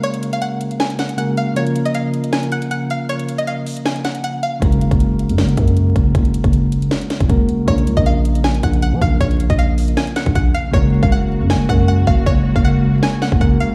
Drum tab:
HH |xxxxx-xxxxxxx-x-|xxxxx-xxxxxxx-x-|xxxxx-oxxxxxx-x-|xxxxx-xxxxxxx-x-|
SD |--------o-o-----|--------o-------|--------o-o-----|--------o-------|
BD |----------------|----------------|----------------|o--o------o---o-|

HH |xxxxx-xxxxxxx-x-|xxxxx-xxxxxxx-x-|xxxxx-oxxxxxx-x-|----------------|
SD |--------o-o-----|--------o-------|--------o-o-----|--------o-------|
BD |o--o-------oo---|o--o------o---o-|o--o-------oo---|o--o------o---o-|

HH |----------------|
SD |--------o-o-----|
BD |o--o-------oo---|